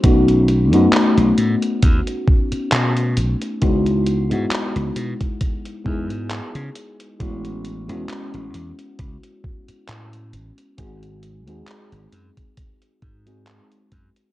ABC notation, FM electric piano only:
X:1
M:4/4
L:1/16
Q:"Swing 16ths" 1/4=67
K:C#m
V:1 name="FM electric piano"
[A,B,CDF]3 [A,B,CDF]12- [A,B,CDF] | [G,B,DEF]3 [G,B,DEF]6- [G,B,DEF] [G,B,DEG]6 | [G,B,CEF]3 [G,B,CEF]12- [G,B,CEF] | [G,^B,DFG]3 [G,B,DFG]6- [G,B,DFG] z [G,B,DFG] z4 |]